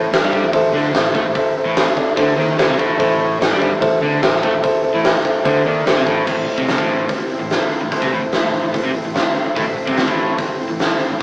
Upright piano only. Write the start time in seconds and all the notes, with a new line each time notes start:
0.12 E4 A4 C5
0.32 E4 A4 C5
0.53 E4 A4 C5
0.74 E4 A4 C5
0.95 E4 A4 C5
1.15 E4 A4 C5
1.36 E4 A4 C5
1.57 E4 A4 C5
1.77 E4 A4 C5
1.97 E4 A4 D5
2.16 E4 A4 C5
2.37 E4 A4 C5
2.58 E4 A4 C5
2.77 E4 A4 C5
2.97 E4 A4 C5
3.18 E4 A4 C5
3.38 E4 A4 C5
3.58 E4 A4 C5
3.80 E4 A4 C5
4.01 E4 A4 C5
4.22 E4 A4 C5
4.42 E4 A4 C5
4.62 E4 A4 C5
4.83 E4 A4 C5
5.03 E4 A4 C5
5.23 E4 A4 C5
5.44 E4 A4 C5
5.66 E4 A4 D5
5.86 E4 A4 C5
6.06 E4 A4 C5